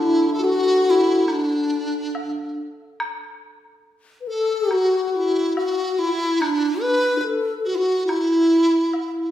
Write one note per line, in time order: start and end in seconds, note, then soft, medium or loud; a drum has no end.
0.00 2.15 D3 medium
0.00 0.33 E4 medium
0.00 0.41 E4 medium
0.34 0.47 A4 medium
0.40 1.28 F#4 medium
0.45 0.92 F#4 medium
0.90 1.34 E4 medium
1.28 2.54 D4 medium
1.28 high woodblock soft
1.32 2.60 D4 medium
2.15 low woodblock soft
3.00 high woodblock medium
4.21 4.29 B4 medium
4.27 4.71 A4 medium
4.27 4.74 A4 medium
4.69 5.54 F#4 medium
4.69 5.07 F#4 medium
4.69 high woodblock soft
5.07 5.17 F#4 medium
5.16 5.57 E4 medium
5.54 6.00 F#4 medium
5.54 low woodblock soft
5.98 6.44 E4 medium
5.98 6.42 E4 medium
6.41 6.83 D4 medium
6.41 7.19 D4 medium
6.41 high woodblock medium
6.81 7.21 B4 medium
7.18 7.26 B4 medium
7.24 7.58 A4 medium
7.59 7.69 A4 soft
7.65 7.77 F#4 medium
7.65 8.12 F#4 medium
7.75 7.79 E4 medium
7.75 8.06 F#4 medium
8.06 9.30 E4 medium
8.06 high woodblock soft
8.11 8.68 E4 medium
8.93 9.31 E4 medium
8.93 low woodblock soft